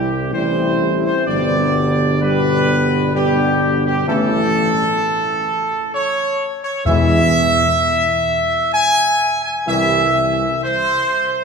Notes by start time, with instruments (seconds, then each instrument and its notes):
Already playing: tuba C2, trombone section E3 G3, french horn section C4 E4, trumpet section G4
0.33 tuba A1, trombone section E3 G3, french horn section C4 E4, trumpet section C5
1.05 trumpet section C5
1.27 tuba G1, trombone section B2 G3, french horn section B3 D4, trumpet section D5
2.21 trombone section B2 G3, french horn section B3 D4, trumpet section B4
3.14 trombone section B2 G3, french horn section B3 D4, trumpet section G4
3.86 trumpet section G4
4.07 tuba A1, trombone section C#3 E3, french horn section A3 C#4, trumpet section A4
5.93 trumpet section C#5
6.64 trumpet section C#5
6.85 timpani E2, tuba E2, trombone section B2 E3, french horn section G#3 E4, trumpet section E5
8.73 trumpet section G#5
9.44 trumpet section G#5
9.66 tuba C2, trombone section C3 E3, french horn section G3 E4, trumpet section E5
10.63 trumpet section C5